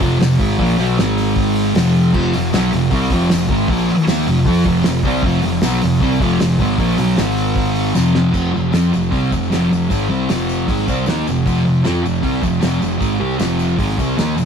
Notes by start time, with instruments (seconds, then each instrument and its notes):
0.00 picked electric bass F1, distorted electric guitar F2 C3 F3, kick, open hi-hat
0.19 picked electric bass F1, distorted electric guitar F2 C3, snare, open hi-hat, tambourine
0.39 picked electric bass G#1, distorted electric guitar G#2 D#3 G#3, kick, open hi-hat
0.58 picked electric bass A#1, distorted electric guitar A#2 F3 A#3, kick, open hi-hat
0.77 picked electric bass B1, distorted electric guitar B2 F#3 B3, open hi-hat
0.98 picked electric bass G#1, distorted electric guitar G#2 D#3 G#3, snare, open hi-hat, tambourine
1.17 snare, open hi-hat
1.36 kick, open hi-hat
1.56 open hi-hat
1.74 picked electric bass F1, distorted electric guitar F2 C3 F3, snare, open hi-hat, tambourine
1.95 open hi-hat
2.13 picked electric bass F1, distorted electric guitar F2 C3 F3, kick, crash
2.33 picked electric bass F1, distorted electric guitar F2 C3, open hi-hat
2.53 picked electric bass B1, distorted electric guitar B2 F#3 B3, snare, open hi-hat, tambourine
2.72 picked electric bass F1, distorted electric guitar F2 C3, snare, open hi-hat
2.91 picked electric bass C2, distorted electric guitar C3 G3 C4, kick, open hi-hat
3.10 picked electric bass F1, distorted electric guitar F2 C3 F3, kick, open hi-hat
3.29 picked electric bass F1, distorted electric guitar F2 C3, snare, open hi-hat, tambourine
3.49 picked electric bass G#1, distorted electric guitar G#2 D#3 G#3, kick, open hi-hat
3.68 picked electric bass A#1, distorted electric guitar A#2 F3 A#3, kick, open hi-hat
3.89 muted distorted electric guitar stroke, muted picked electric bass stroke, open hi-hat
4.07 picked electric bass D#2, distorted electric guitar D#3 A#3 D#4, snare, open hi-hat, tambourine
4.27 picked electric bass F1, distorted electric guitar F2 C3, open hi-hat
4.46 picked electric bass F2, distorted electric guitar F3 C4 F4, kick, open hi-hat
4.64 picked electric bass F1, distorted electric guitar F2 C3 F3, kick, open hi-hat
4.83 picked electric bass F1, distorted electric guitar F2 C3, snare, open hi-hat, tambourine
5.02 picked electric bass C2, distorted electric guitar C3 G3 C4, kick, open hi-hat
5.22 picked electric bass F1, distorted electric guitar F2 C3 F3, kick, open hi-hat
5.42 picked electric bass F1, distorted electric guitar F2 C3, open hi-hat
5.61 picked electric bass B1, distorted electric guitar B2 F#3 B3, snare, open hi-hat, tambourine
5.82 picked electric bass F1, distorted electric guitar F2 C3, snare, open hi-hat
6.00 picked electric bass C2, distorted electric guitar C3 G3 C4, kick, open hi-hat
6.20 picked electric bass F1, distorted electric guitar F2 C3 F3, kick, open hi-hat
6.39 picked electric bass F1, distorted electric guitar F2 C3, snare, open hi-hat, tambourine
6.59 picked electric bass G#1, distorted electric guitar G#2 D#3 G#3, kick, open hi-hat
6.78 picked electric bass A#1, distorted electric guitar A#2 F3 A#3, kick, open hi-hat
6.97 picked electric bass B1, distorted electric guitar B2 F#3 B3, open hi-hat
7.17 picked electric bass G#1, distorted electric guitar G#2 D#3 G#3, snare, open hi-hat, tambourine
7.37 open hi-hat
7.55 kick, open hi-hat
7.75 open hi-hat
7.94 picked electric bass F1, distorted electric guitar F2 C3 F3, snare, tambourine
8.15 snare
8.32 picked electric bass F1, distorted electric guitar F2 C3 F3, kick, crash, tambourine
8.45 tambourine
8.52 picked electric bass F1, distorted electric guitar F2 C3
8.56 tambourine
8.72 picked electric bass F2, distorted electric guitar F3 C4 F4, snare, open hi-hat, tambourine
8.92 picked electric bass F1, distorted electric guitar F2 C3, tambourine
9.03 tambourine
9.11 picked electric bass C2, distorted electric guitar C3 G3 C4, kick, open hi-hat, tambourine
9.31 picked electric bass F1, distorted electric guitar F2 C3, kick, tambourine
9.43 tambourine
9.50 picked electric bass F1, distorted electric guitar F2 C3 F3, snare, open hi-hat, tambourine
9.70 picked electric bass F1, distorted electric guitar F2 C3, tambourine
9.89 picked electric bass G#1, distorted electric guitar G#2 D#3 G#3, kick, open hi-hat, tambourine
10.09 picked electric bass C2, distorted electric guitar C3 G3 C4, tambourine
10.29 picked electric bass F1, distorted electric guitar F2 C3 F3, snare, open hi-hat, tambourine
10.49 tambourine
10.68 picked electric bass G#1, distorted electric guitar G#2 D#3 G#3, kick, open hi-hat, tambourine
10.80 snare
10.87 picked electric bass C2, distorted electric guitar C3 G3 C4, kick, snare, tambourine
10.98 tambourine
11.06 picked electric bass D#2, distorted electric guitar D#3 A#3 D#4, snare, open hi-hat, tambourine
11.27 picked electric bass F1, distorted electric guitar F2 C3, tambourine
11.37 tambourine
11.46 picked electric bass F1, distorted electric guitar F2 C3 F3, kick, open hi-hat, tambourine
11.57 tambourine
11.65 picked electric bass F1, distorted electric guitar F2 C3, tambourine
11.84 picked electric bass F2, distorted electric guitar F3 C4 F4, snare, open hi-hat, tambourine
12.03 picked electric bass F1, distorted electric guitar F2 C3, tambourine
12.15 tambourine
12.22 picked electric bass C2, distorted electric guitar C3 G3 C4, kick, open hi-hat, tambourine
12.41 picked electric bass F1, distorted electric guitar F2 C3, kick, tambourine
12.54 tambourine
12.61 picked electric bass F1, distorted electric guitar F2 C3 F3, snare, open hi-hat, tambourine
12.81 picked electric bass F1, distorted electric guitar F2 C3, tambourine
12.91 tambourine
12.99 picked electric bass G#1, distorted electric guitar G#2 D#3 G#3, kick, open hi-hat, tambourine
13.12 tambourine
13.19 picked electric bass C2, distorted electric guitar C3 G3 C4
13.31 tambourine
13.38 picked electric bass F1, distorted electric guitar F2 C3 F3, snare, open hi-hat, tambourine
13.50 tambourine
13.59 tambourine
13.70 tambourine
13.78 picked electric bass G#1, distorted electric guitar G#2 D#3 G#3, kick, open hi-hat, tambourine
13.89 snare, tambourine
13.98 picked electric bass C2, distorted electric guitar C3 G3 C4, kick, snare, tambourine
14.17 picked electric bass D#2, distorted electric guitar D#3 A#3 D#4, snare, open hi-hat, tambourine
14.37 picked electric bass F1, distorted electric guitar F2 C3, tambourine